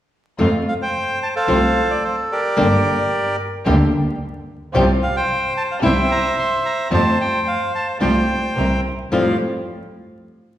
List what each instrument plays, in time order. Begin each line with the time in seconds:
0.39 double bass F2, nylon-string guitar C3 F3 A3 C4 F4, string section A3 C4 F4
0.68 bandoneon F5
0.82 bandoneon C5 G5
1.23 bandoneon A5
1.36 bandoneon A4 C5 F5
1.48 double bass C2, nylon-string guitar C3 F3 A3 C4 F4, string section A3 C4 F4
1.90 bandoneon D5
2.04 bandoneon C5
2.32 bandoneon G4 A#4 D5
2.57 double bass G1, nylon-string guitar D3 G3 A#3 D4 G4, string section A#3 D4 G4
3.66 double bass D2, nylon-string guitar D3 G3 A#3 D4 G4, string section A#3 D4 G4
4.74 double bass C2, nylon-string guitar C3 F3 G3 C4 G4, string section C4 F4 G4
5.03 bandoneon F5
5.16 bandoneon C5 G5
5.57 bandoneon A5
5.71 bandoneon F5
5.82 double bass C2, nylon-string guitar C3 E3 G3 C4 E4, string section C4 E4 G4, bandoneon C5 E5 G5
6.11 bandoneon A#5
6.39 bandoneon C6
6.65 bandoneon A#5
6.91 double bass F2, nylon-string guitar F3 G3 C4 F4, string section A3 F4 G4, bandoneon C5 A5
7.21 bandoneon G5
7.47 bandoneon F5
7.75 bandoneon A5
8.00 double bass C2, nylon-string guitar F3 G3 C4 F4, string section A3 F4 G4, bandoneon C5 G5
8.56 double bass C2, string section C4 E4 A#4
9.12 nylon-string guitar F2 A2 F3 G3 C4 F4, double bass F2, string section A3 F4 G4, bandoneon F5